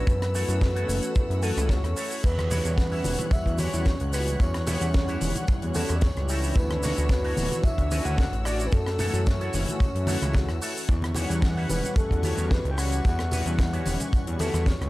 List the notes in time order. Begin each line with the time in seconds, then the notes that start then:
Already playing: B4 E6
0.07 F#2 A4 F#5, kick, closed hi-hat, shaker
0.22 cross-stick, snare, closed hi-hat
0.33 E3 A3 C#4 E4 F#4 A4 C#5, open hi-hat, shaker
0.48 F#2, closed hi-hat, shaker
0.61 kick, snare, closed hi-hat, shaker
0.75 E4 F#4 A4 C#5, closed hi-hat
0.88 F#1, open hi-hat, shaker
1.02 closed hi-hat, shaker
1.16 kick, closed hi-hat, shaker
1.29 F#2 E3 A3 C#4 F#4, closed hi-hat
1.42 E4 F#4 A4 B4, open hi-hat, shaker
1.57 C#2 E3 A3 C#4 F#4, cross-stick, closed hi-hat, shaker
1.69 C#5, kick, snare, closed hi-hat, shaker
1.84 E2, cross-stick, closed hi-hat
1.96 E4 F#4 A4 C#5, open hi-hat, shaker
2.11 open hi-hat, shaker
2.23 E2 B4 C#5 F#6, kick, tambourine, crash, shaker
2.38 cross-stick, closed hi-hat, high conga
2.50 E3 G3 C#4 E4 F#4 G4 C#5 F#5, open hi-hat, tambourine, low conga, shaker
2.65 E2, closed hi-hat, tambourine, shaker
2.78 B4, kick, snare, closed hi-hat, tambourine, shaker
2.91 E4 F#4 G4 E5, open hi-hat, tambourine
3.04 E1, open hi-hat, tambourine, high conga, shaker
3.18 closed hi-hat, tambourine, low conga, shaker
3.31 E2 E5, kick, closed hi-hat, tambourine, shaker
3.46 E2 E3 G3 C#4 F#4, kick, closed hi-hat
3.58 E4 F#4 G4 C#5, open hi-hat, tambourine, high conga, shaker
3.73 E2 E3 G3 C#4 F#4, closed hi-hat, tambourine, shaker
3.86 kick, snare, closed hi-hat, tambourine, shaker
4.00 C#2, closed hi-hat
4.12 E3 G3 C#4 E4 F#4 G4 B4 C#5, cross-stick, open hi-hat, tambourine, shaker
4.27 closed hi-hat, tambourine, shaker
4.40 E2 C#5, kick, closed hi-hat, tambourine, shaker
4.54 cross-stick, snare, closed hi-hat
4.67 E3 G3 C#4 E4 F#4 G4 C#5 F#5, open hi-hat, tambourine, low conga, shaker
4.81 E2, closed hi-hat, tambourine, shaker
4.94 kick, snare, closed hi-hat, tambourine, shaker
5.08 E4 F#4 G4 C#5, closed hi-hat, tambourine
5.21 E1, open hi-hat, tambourine, high conga, shaker
5.35 closed hi-hat, tambourine, low conga, shaker
5.48 kick, closed hi-hat, tambourine, shaker
5.62 E2 E3 G3 C#4 F#4, closed hi-hat
5.75 E4 F#4 G4 A4 E5, open hi-hat, tambourine, high conga, shaker
5.88 E2, cross-stick, closed hi-hat, tambourine, shaker
5.95 D5
6.01 C#5, kick, snare, closed hi-hat, tambourine, shaker
6.16 C#2 E3 G3 C#4 G4, cross-stick, closed hi-hat
6.29 E3 C#4 D4 E4 F#4 G4 A4, open hi-hat, tambourine, shaker
6.43 open hi-hat, tambourine, shaker
6.56 D2 B4 F#5 E6, kick, tambourine, shaker
6.70 cross-stick, closed hi-hat, high conga
6.83 E3 D4 E4 F#4 C#5, open hi-hat, tambourine, low conga, shaker
6.98 D2, closed hi-hat, tambourine, shaker
7.09 B4, kick, snare, closed hi-hat, tambourine, shaker
7.24 D4 E4 F#4 C#5, open hi-hat, tambourine
7.37 D1, open hi-hat, tambourine, high conga, shaker
7.51 closed hi-hat, tambourine, low conga, shaker
7.63 D2 E5, kick, closed hi-hat, tambourine, shaker
7.78 D2 E3 C#4 D4 F#4, kick, closed hi-hat
7.91 D4 E4 F#4 B4, open hi-hat, tambourine, high conga, shaker
8.05 D2 E3 C#4 D4 F#4 F#5, closed hi-hat, tambourine, shaker
8.18 kick, snare, closed hi-hat, tambourine, shaker
8.32 A1, closed hi-hat
8.45 E3 C#4 D4 E4 F#4 D5, cross-stick, open hi-hat, tambourine, shaker
8.59 closed hi-hat, tambourine, shaker
8.66 B4
8.72 F#2 A4, kick, closed hi-hat, tambourine, shaker
8.86 cross-stick, snare, closed hi-hat
8.99 E3 A3 C#4 E4 F#4 A4 C#5, open hi-hat, tambourine, low conga, shaker
9.13 F#2, closed hi-hat, tambourine, shaker
9.27 C#5, kick, snare, closed hi-hat, tambourine, shaker
9.41 E4 F#4 A4 C#5, closed hi-hat, tambourine
9.53 F#1, open hi-hat, tambourine, high conga, shaker
9.67 closed hi-hat, tambourine, low conga, shaker
9.80 kick, closed hi-hat, tambourine, shaker
9.94 F#2 E3 A3 C#4 F#4, closed hi-hat
10.07 E4 F#4 A4 E5, open hi-hat, tambourine, high conga, shaker
10.21 C#2 E3 A3 C#4 F#4, cross-stick, closed hi-hat, tambourine, shaker
10.33 kick, snare, closed hi-hat, tambourine, shaker
10.49 E2, cross-stick, closed hi-hat, tambourine
10.61 E4 F#4 A4 E5, open hi-hat, tambourine, shaker
10.76 open hi-hat, tambourine, shaker
10.89 E2 G3 C#6, kick, tambourine, shaker
11.02 cross-stick, closed hi-hat, high conga
11.14 E3 G3 C#4 E4 F#4 G4 C#5 F#5, open hi-hat, tambourine, low conga, shaker
11.30 E2, closed hi-hat, tambourine, shaker
11.42 kick, snare, closed hi-hat, tambourine, shaker
11.56 E4 F#4 G4 C#5, open hi-hat, tambourine
11.69 E1 B4, open hi-hat, tambourine, high conga, shaker
11.83 closed hi-hat, tambourine, low conga, shaker
11.96 E2 A4, kick, closed hi-hat, tambourine, shaker
12.10 E2 E3 G3 C#4 F#4, kick, closed hi-hat
12.23 E4 F#4 G4 C#5, open hi-hat, tambourine, high conga, shaker
12.38 E2 E3 G3 C#4 F#4, closed hi-hat, tambourine, shaker
12.51 B4, kick, snare, closed hi-hat, tambourine, shaker
12.65 C#2, closed hi-hat
12.71 G5
12.77 E3 G3 C#4 E4 F#4 G4 C#5 F#5, cross-stick, open hi-hat, tambourine, shaker
12.92 closed hi-hat, tambourine, shaker
13.05 E2, kick, closed hi-hat, tambourine, shaker
13.19 cross-stick, snare, closed hi-hat
13.30 E3 G3 C#4 E4 F#4 G4 B4 F#5, open hi-hat, tambourine, low conga, shaker
13.45 E2, closed hi-hat, tambourine, shaker
13.59 kick, snare, closed hi-hat, tambourine, shaker
13.73 E4 F#4 G4 C#5, closed hi-hat, tambourine
13.85 E1, open hi-hat, tambourine, high conga, shaker
14.00 closed hi-hat, tambourine, low conga, shaker
14.13 kick, closed hi-hat, tambourine, shaker
14.26 E2 E3 G3 C#4 F#4, closed hi-hat
14.39 E4 F#4 G4 A4 C#5, open hi-hat, tambourine, high conga, shaker
14.54 E2, cross-stick, closed hi-hat, tambourine, shaker
14.66 C#5, kick, snare, closed hi-hat, tambourine, shaker
14.81 C#2 E3 G3 C#4 G4, cross-stick, closed hi-hat